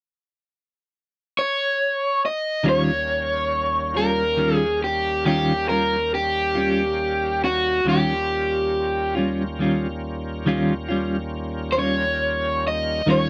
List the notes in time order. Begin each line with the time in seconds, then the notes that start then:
1.39 C#5
2.26 D#5
2.63 D#2 D#3 G3 A#3 C#4 F4 F5
2.69 C#5
3.94 G3 C#4 F4 A#4
4.37 D#3 G3 C#4 F4
4.56 G#4
4.84 G4
5.26 D#3 G3 C#4 F4 G4
5.68 G3 C#4 F4 A#4
6.15 G4
6.55 G3 C#4 F4
7.44 F#4
7.84 D#2 D#3 G3 A#3 C#4 F4
7.89 G4
9.15 G3 C#4 F4
9.59 D#3 G3 C#4 F4
10.46 D#3 G3 C#4 F4
10.89 G3 C#4 F4
11.72 F4 C5
11.77 G3 C#4 C#5
12.68 D#5
13.06 D#2 D#3 G3 A#3 C#4 F4
13.10 C#5